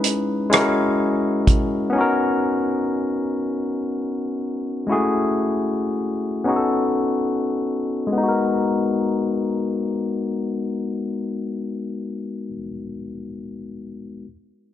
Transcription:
0.00 0.48 G#3 medium
0.00 0.50 C#4 medium
0.00 0.52 D#4 medium
0.00 0.51 E4 medium
0.00 0.53 B4 medium
0.00 closed hi-hat medium
0.50 1.94 G#3 medium
0.50 1.92 C#4 medium
0.50 1.95 E4 medium
0.50 closed hi-hat medium
0.54 1.96 F#4 medium
0.54 1.96 A#4 medium
0.54 cross-stick medium
1.47 kick medium
1.47 closed hi-hat medium
1.90 4.82 B3 medium
1.90 4.84 C#4 medium
1.95 4.85 D#4 medium
1.95 4.86 F#4 medium
2.01 4.88 A#4 medium
4.87 4.95 G#3 medium
4.87 6.44 C#4 medium
4.87 6.47 E4 medium
4.87 6.47 F#4 medium
4.92 6.49 A3 medium
4.92 6.48 G#4 medium
6.44 8.11 B3 medium
6.44 8.17 C#4 medium
6.44 8.16 D#4 medium
6.48 8.18 F#4 medium
6.48 6.56 G#4 medium
6.56 8.22 A4 medium
8.07 12.48 G#3 medium
8.12 12.53 B3 medium
8.18 12.58 D#4 medium
8.23 12.64 F#4 medium
8.28 12.69 A#4 medium

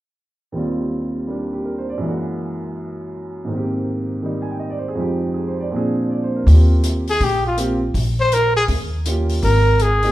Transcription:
0.52 2.01 D#2 soft
0.52 2.02 D#3 soft
0.52 1.26 G3 soft
0.52 2.03 C4 soft
0.57 2.04 F4 soft
1.27 2.02 G3 soft
1.27 2.02 A#3 soft
1.27 2.03 D4 soft
1.27 1.52 G4 soft
1.53 1.72 G4 soft
1.65 1.87 A#4 soft
1.78 1.97 C5 soft
1.89 2.08 D5 soft
1.98 3.48 F#2 soft
1.98 3.49 E3 soft
2.03 3.50 G#3 soft
2.03 3.49 A#3 soft
2.08 3.53 F#4 soft
3.45 4.95 G#2 soft
3.45 4.21 D#3 soft
3.50 4.98 A#3 soft
3.50 5.00 C4 soft
3.56 4.98 G4 soft
4.23 4.97 D#3 soft
4.23 4.98 G3 soft
4.23 4.97 D#4 soft
4.42 4.54 G#5 soft
4.51 4.64 G5 soft
4.60 4.77 D#5 soft
4.70 4.85 D5 soft
4.79 4.91 C5 soft
4.88 5.02 G#4 medium
4.95 5.70 F2 soft
4.95 5.70 F3 soft
4.95 5.72 G#3 soft
4.95 5.72 D#4 soft
5.00 5.73 G4 soft
5.34 5.56 G#4 soft
5.48 5.66 C5 soft
5.60 5.79 D5 soft
5.71 6.45 A#2 soft
5.71 6.46 F3 soft
5.71 6.45 C4 soft
5.71 6.47 D4 soft
5.76 6.48 G#4 medium
6.10 6.32 D5 soft
6.24 6.41 C5 soft
6.36 6.54 A#4 soft
6.46 7.17 D#2 medium
6.46 7.02 A#3 soft
6.46 7.02 C4 soft
6.46 7.03 F4 soft
6.46 7.03 G4 medium
6.46 kick soft
6.46 open hi-hat soft
6.83 closed hi-hat soft
7.07 7.25 G#4 medium
7.07 open hi-hat soft
7.20 7.90 A#1 medium
7.20 7.45 G4 medium
7.20 kick soft
7.20 open hi-hat soft
7.47 7.58 F4 medium
7.57 7.78 A#3 medium
7.57 7.79 C4 soft
7.57 7.79 F4 soft
7.57 7.79 G4 medium
7.57 closed hi-hat soft
7.94 8.65 A#1 medium
7.94 kick soft
7.94 open hi-hat soft
8.20 8.35 C5 medium
8.32 8.56 A#4 medium
8.32 closed hi-hat soft
8.56 8.64 G#4 medium
8.68 9.38 D#2 medium
8.68 kick soft
8.68 open hi-hat soft
9.05 9.43 A#3 soft
9.05 9.43 C#4 soft
9.05 9.43 F4 soft
9.05 9.43 G4 medium
9.05 closed hi-hat soft
9.29 open hi-hat soft
9.42 10.12 G#1 medium
9.42 9.83 A#4 medium
9.42 kick soft
9.42 open hi-hat soft
9.79 10.12 G#4 medium
9.79 closed hi-hat soft
10.03 10.12 A#3 medium
10.03 10.12 C4 medium
10.03 10.12 D#4 medium
10.03 10.12 G4 medium
10.03 open hi-hat soft

